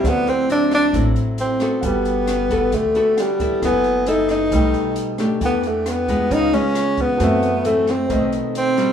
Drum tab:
HH |xxxxxxxx|xxxxxxxx|xxxxxxxx|xxxxxxxx|
SD |r--r---r|--r---r-|r--r---r|--r---r-|
BD |o---o---|o--oo--o|o---o---|o--oo--o|

HH |xxxxxxxx|
SD |r--r---r|
BD |o---o---|